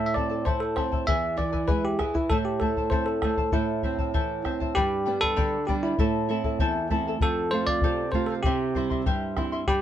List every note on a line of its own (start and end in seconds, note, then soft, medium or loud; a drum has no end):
0.00 1.05 A2 medium
0.00 0.14 E4 medium
0.00 0.14 A4 medium
0.00 0.15 C5 medium
0.00 0.13 E5 medium
0.00 0.15 A5 medium
0.06 0.14 E5 medium
0.14 0.46 C4 medium
0.14 0.30 E4 medium
0.14 0.29 A4 medium
0.14 0.47 D5 medium
0.14 0.30 E5 medium
0.14 0.28 A5 medium
0.14 bombo low medium
0.30 0.44 E4 soft
0.30 0.45 A4 soft
0.30 0.45 A5 soft
0.45 0.76 E4 medium
0.45 0.77 E4 soft
0.45 0.76 A4 medium
0.45 0.62 C5 medium
0.45 0.77 C5 medium
0.45 0.76 E5 medium
0.45 0.77 A5 medium
0.45 bombo low medium
0.60 0.75 A4 medium
0.76 1.07 C4 medium
0.76 0.92 E4 medium
0.76 0.91 A4 medium
0.76 1.05 C5 medium
0.76 0.92 E5 medium
0.76 0.91 A5 medium
0.76 bombo rim soft
0.76 bombo low medium
0.92 1.07 E4 soft
0.92 1.08 A4 soft
0.92 1.07 A5 soft
0.92 bombo low medium
1.07 2.27 E2 medium
1.07 1.37 E4 medium
1.07 1.38 G#4 medium
1.07 1.36 B4 medium
1.07 1.36 E5 loud
1.07 1.36 E5 medium
1.07 1.37 G#5 medium
1.07 bombo low medium
1.37 1.68 E3 medium
1.37 1.52 E4 medium
1.37 1.52 B4 medium
1.37 1.70 D5 medium
1.37 1.53 E5 medium
1.37 1.51 G#5 medium
1.37 bombo low medium
1.53 1.67 E4 soft
1.53 1.67 B4 soft
1.53 1.67 G#5 soft
1.53 bombo low medium
1.67 1.99 G#3 medium
1.67 1.98 E4 medium
1.67 1.99 G#4 medium
1.67 1.84 B4 medium
1.67 1.98 B4 medium
1.67 1.98 E5 medium
1.67 1.99 G#5 medium
1.67 bombo low medium
1.85 1.99 G4 medium
1.99 2.29 E3 soft
1.99 2.14 E4 medium
1.99 2.15 G#4 medium
1.99 2.14 B4 medium
1.99 2.15 E5 medium
1.99 2.13 G#5 medium
1.99 bombo rim medium
1.99 bombo low soft
2.14 2.31 E4 medium
2.14 2.30 E4 soft
2.14 2.30 B4 soft
2.14 2.30 G#5 soft
2.14 bombo low medium
2.30 3.50 A2 medium
2.30 2.60 E4 medium
2.30 2.37 A4 medium
2.30 2.61 A4 medium
2.30 2.61 C5 medium
2.30 2.60 E5 medium
2.30 2.61 A5 medium
2.30 bombo low medium
2.45 2.61 G4 medium
2.60 2.91 A3 medium
2.60 2.77 E4 medium
2.60 2.92 A4 medium
2.60 2.77 C5 medium
2.60 2.76 E5 medium
2.60 2.76 A5 medium
2.60 bombo low medium
2.76 2.90 E4 soft
2.76 2.91 C5 soft
2.76 2.91 A5 soft
2.76 bombo low medium
2.90 3.22 C4 soft
2.90 3.23 E4 medium
2.90 3.22 A4 medium
2.90 3.07 C5 medium
2.90 3.23 C5 medium
2.90 3.22 E5 medium
2.90 3.23 A5 medium
2.90 bombo low medium
3.06 3.21 A4 medium
3.22 3.53 A3 soft
3.22 3.37 E4 medium
3.22 3.54 A4 medium
3.22 3.36 C5 medium
3.22 3.37 E5 soft
3.22 3.36 A5 medium
3.22 bombo rim medium
3.22 bombo low medium
3.37 3.52 E4 soft
3.37 3.52 C5 soft
3.37 3.52 A5 soft
3.37 bombo low medium
3.52 4.73 A2 medium
3.52 3.83 E4 medium
3.52 4.41 E4 medium
3.52 3.84 A4 medium
3.52 3.83 C5 medium
3.52 3.82 E5 medium
3.52 3.83 A5 medium
3.52 bombo low medium
3.83 4.14 C4 medium
3.83 3.99 E4 medium
3.83 3.98 C5 medium
3.83 3.99 E5 medium
3.83 3.97 A5 medium
3.83 bombo low medium
3.98 4.13 E4 soft
3.98 4.13 C5 soft
3.98 4.13 A5 soft
3.98 bombo low medium
4.14 4.45 E3 soft
4.14 4.44 E4 medium
4.14 4.45 A4 medium
4.14 4.45 C5 medium
4.14 4.43 E5 medium
4.14 4.45 A5 medium
4.14 bombo low medium
4.44 4.76 C4 soft
4.44 4.60 E4 medium
4.44 4.60 C5 medium
4.44 4.60 E5 medium
4.44 4.59 A5 medium
4.44 bombo rim soft
4.44 bombo low soft
4.60 4.76 E4 soft
4.60 4.75 C5 medium
4.60 4.76 A5 medium
4.60 bombo low soft
4.75 5.36 G2 medium
4.75 5.23 G4 loud
4.75 5.07 G4 medium
4.75 5.05 B4 medium
4.75 5.05 D5 medium
4.75 5.04 G5 medium
4.75 5.05 B5 medium
4.75 bombo low medium
5.06 5.56 G3 soft
5.06 5.56 B3 soft
5.06 5.57 D4 medium
5.06 5.22 B4 medium
5.06 5.21 D5 medium
5.06 5.22 G5 medium
5.06 5.20 B5 medium
5.21 5.64 A4 loud
5.21 5.36 B4 soft
5.21 5.36 D5 soft
5.21 5.36 B5 medium
5.21 bombo low soft
5.36 5.98 D3 medium
5.36 5.68 G4 medium
5.36 5.67 B4 medium
5.36 5.68 D5 medium
5.36 5.67 G5 medium
5.36 5.68 B5 medium
5.36 bombo low medium
5.67 5.93 G3 soft
5.67 5.93 B3 soft
5.67 5.93 D4 medium
5.67 5.74 G4 medium
5.67 5.84 B4 medium
5.67 5.84 D5 medium
5.67 5.84 G5 medium
5.67 5.83 B5 medium
5.67 bombo low medium
5.83 6.87 E4 medium
5.83 5.99 B4 soft
5.83 5.99 D5 soft
5.83 5.99 B5 medium
5.98 6.59 A2 medium
5.98 6.28 E4 medium
5.98 6.29 A4 medium
5.98 6.30 C5 medium
5.98 6.27 E5 medium
5.98 6.29 A5 medium
5.98 bombo low medium
6.29 6.79 A3 medium
6.29 6.79 C4 soft
6.29 6.44 E4 medium
6.29 6.79 E4 medium
6.29 6.43 A4 medium
6.29 6.45 E5 medium
6.29 6.43 A5 medium
6.44 6.59 E4 soft
6.44 6.59 A4 soft
6.44 6.60 A5 medium
6.44 bombo low medium
6.59 7.20 E2 medium
6.59 6.89 E4 medium
6.59 6.90 A4 loud
6.59 6.91 C5 medium
6.59 6.89 E5 medium
6.59 6.90 A5 medium
6.59 bombo low medium
6.90 7.15 A3 soft
6.90 7.16 C4 soft
6.90 7.06 E4 medium
6.90 7.16 E4 medium
6.90 7.07 A4 medium
6.90 7.06 E5 medium
6.90 7.06 A5 medium
6.90 bombo low medium
7.07 7.22 E4 soft
7.07 7.21 A4 medium
7.07 7.22 A5 medium
7.20 7.81 F2 medium
7.20 7.51 A4 medium
7.20 7.54 A4 loud
7.20 7.52 C5 medium
7.20 7.53 F5 medium
7.20 bombo low medium
7.51 8.01 A3 medium
7.51 8.02 C4 soft
7.51 8.02 F4 medium
7.51 7.68 A4 medium
7.51 7.66 C5 medium
7.51 7.68 C5 medium
7.51 7.68 F5 medium
7.67 7.83 C5 soft
7.67 8.10 D5 loud
7.67 7.83 F5 medium
7.67 bombo low medium
7.81 8.43 C3 medium
7.81 8.12 A4 medium
7.81 8.13 C5 medium
7.81 8.14 F5 medium
7.81 bombo low medium
8.12 8.38 A3 soft
8.12 8.39 C4 soft
8.12 8.39 F4 medium
8.12 8.29 A4 medium
8.12 8.27 C5 medium
8.12 8.30 C5 medium
8.12 8.29 F5 medium
8.12 bombo low medium
8.26 8.34 A4 medium
8.26 8.45 F5 medium
8.32 8.44 C5 soft
8.43 9.05 C3 medium
8.43 8.75 E4 medium
8.43 9.01 G4 medium
8.43 8.76 G4 medium
8.43 8.74 C5 medium
8.43 8.75 E5 medium
8.43 8.76 C6 medium
8.43 bombo low medium
8.75 9.25 G3 soft
8.75 9.25 C4 soft
8.75 8.90 E4 medium
8.75 9.25 E4 medium
8.75 8.91 C5 medium
8.75 8.90 E5 medium
8.75 8.89 C6 medium
8.75 bombo low soft
8.90 9.05 E4 soft
8.90 9.06 E5 medium
8.90 9.06 C6 medium
8.90 bombo low medium
9.06 9.66 G2 medium
9.06 9.35 E4 medium
9.06 9.37 G4 medium
9.06 9.35 C5 medium
9.06 9.36 E5 medium
9.06 9.36 C6 medium
9.06 bombo low medium
9.36 9.61 G3 soft
9.36 9.62 C4 soft
9.36 9.52 E4 medium
9.36 9.62 E4 medium
9.36 9.52 C5 medium
9.36 9.52 E5 medium
9.36 9.51 C6 medium
9.36 bombo rim soft
9.36 bombo low medium
9.52 9.68 E4 soft
9.52 9.68 E5 soft
9.52 9.68 C6 medium
9.67 9.82 G2 medium
9.67 9.82 G4 loud
9.67 9.82 G4 medium
9.67 9.82 B4 medium
9.67 9.82 D5 medium
9.67 9.82 G5 medium
9.67 9.82 B5 medium
9.67 bombo low medium